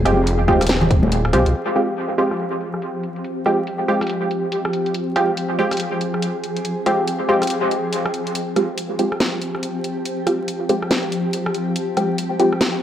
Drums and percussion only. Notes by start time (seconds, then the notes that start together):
0.06 cross-stick, closed hi-hat
0.27 closed hi-hat
0.48 kick, high conga
0.61 cross-stick, closed hi-hat
0.67 snare, closed hi-hat
0.69 closed hi-hat
0.82 low conga
0.91 kick, closed hi-hat
1.03 high conga
1.12 closed hi-hat
1.25 cross-stick
1.33 closed hi-hat
1.46 closed hi-hat
1.54 closed hi-hat
1.76 cross-stick
1.97 closed hi-hat
2.31 cross-stick, closed hi-hat
2.37 closed hi-hat
2.40 closed hi-hat
2.61 closed hi-hat
2.74 cross-stick
2.82 closed hi-hat
3.03 closed hi-hat
3.16 closed hi-hat
3.24 closed hi-hat
3.46 cross-stick, closed hi-hat
3.67 closed hi-hat
4.01 cross-stick, closed hi-hat
4.07 closed hi-hat
4.09 closed hi-hat
4.31 closed hi-hat
4.52 closed hi-hat
4.65 cross-stick
4.73 closed hi-hat
4.86 closed hi-hat
4.94 closed hi-hat
5.16 cross-stick, closed hi-hat
5.37 closed hi-hat
5.71 cross-stick, closed hi-hat
5.77 closed hi-hat
5.80 closed hi-hat
6.01 closed hi-hat
6.14 cross-stick
6.22 closed hi-hat
6.44 closed hi-hat
6.57 closed hi-hat
6.65 closed hi-hat
6.86 cross-stick, closed hi-hat
7.07 closed hi-hat
7.42 cross-stick, closed hi-hat
7.47 closed hi-hat
7.50 closed hi-hat
7.71 closed hi-hat
7.93 closed hi-hat
8.06 cross-stick
8.14 closed hi-hat
8.27 closed hi-hat
8.35 closed hi-hat
8.56 cross-stick, closed hi-hat
8.78 closed hi-hat
8.99 closed hi-hat
9.12 cross-stick
9.20 snare, closed hi-hat
9.42 closed hi-hat
9.55 cross-stick
9.63 closed hi-hat
9.84 closed hi-hat
10.05 closed hi-hat
10.27 cross-stick, closed hi-hat
10.48 closed hi-hat
10.69 closed hi-hat
10.82 cross-stick
10.91 snare, closed hi-hat
11.12 closed hi-hat
11.33 closed hi-hat
11.46 cross-stick
11.54 closed hi-hat
11.76 closed hi-hat
11.97 cross-stick, closed hi-hat
12.18 closed hi-hat
12.40 closed hi-hat
12.52 cross-stick
12.61 snare, closed hi-hat